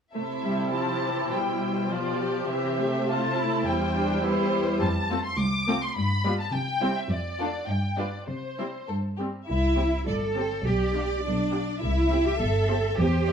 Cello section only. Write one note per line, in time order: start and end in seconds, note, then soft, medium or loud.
0.14 1.27 C3 soft
1.32 2.49 B2 soft
2.49 3.63 C3 soft
3.65 4.81 E2 soft
4.81 5.26 F2 medium
5.39 5.84 C2 medium
5.95 6.41 G2 medium
6.53 6.98 C3 medium
7.10 7.56 F2 medium
7.68 8.16 G2 soft
8.28 8.76 C3 soft
8.88 9.36 G2 soft
9.48 10.03 E4 medium
10.07 10.65 A4 medium
10.65 11.24 G4 medium
11.25 11.81 D4 medium
11.83 12.25 E4 medium
12.26 12.41 G4 medium
12.41 12.98 A4 medium
12.97 13.32 G4 medium